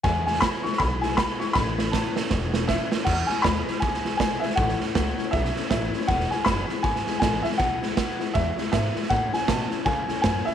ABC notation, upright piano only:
X:1
M:4/4
L:1/8
Q:"Swing" 1/4=159
K:E
V:1 name="Upright piano"
g g b c' b g b c' | b2 a2 z2 e2 | f g b2 g2 g e | f4 e2 e2 |
f g b2 g2 g e | f4 e2 e2 | f g a2 g2 g e |]